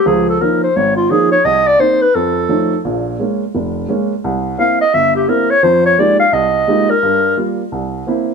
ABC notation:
X:1
M:4/4
L:1/8
Q:"Swing" 1/4=172
K:Fm
V:1 name="Clarinet"
A =A B c d F _A d | e =d c =B =A4 | z8 | z2 f e =e G B d |
c d =d f e3 B- | B2 z6 |]
V:2 name="Upright piano"
[D,,F,]2 [F,B,DE] z A,,,2 [F,B,DE] z | C,,2 [B,CE] z F,,2 [F,=A,DE] z | [B,,,B,,]2 [A,B,D] z F,,,2 [A,B,D] z | C,,2 [B,C=E] z G,,,2 [B,CE] z |
[F,,F,]2 [A,B,EFG] z C,,2 [A,B,EFG] z | G,,2 [G,B,F] z C,,2 [B,C=E] z |]